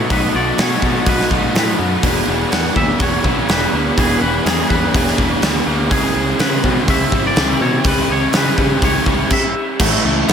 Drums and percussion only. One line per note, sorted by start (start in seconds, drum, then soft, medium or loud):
0.10 kick loud
0.10 open hi-hat medium
0.58 snare loud
0.58 open hi-hat medium
0.82 kick medium
1.06 kick loud
1.06 open hi-hat medium
1.20 snare soft
1.31 kick medium
1.55 snare loud
1.55 open hi-hat medium
2.03 kick loud
2.03 open hi-hat medium
2.52 snare loud
2.52 open hi-hat medium
2.76 kick medium
3.00 kick loud
3.00 open hi-hat medium
3.24 kick medium
3.49 snare loud
3.49 open hi-hat medium
3.98 kick loud
3.98 open hi-hat medium
4.46 snare loud
4.46 open hi-hat medium
4.70 kick medium
4.94 kick loud
4.94 open hi-hat medium
5.07 snare soft
5.18 kick medium
5.42 snare loud
5.42 open hi-hat medium
5.91 kick loud
5.91 open hi-hat medium
6.39 snare loud
6.39 open hi-hat medium
6.64 kick medium
6.88 kick loud
6.88 open hi-hat medium
7.12 kick medium
7.36 snare loud
7.36 open hi-hat medium
7.84 kick loud
7.84 open hi-hat medium
8.33 snare loud
8.33 open hi-hat medium
8.58 kick medium
8.82 kick loud
8.82 open hi-hat medium
9.06 kick medium
9.30 kick loud
9.30 crash loud
9.80 kick loud
9.80 crash loud
10.29 snare loud
10.29 open hi-hat medium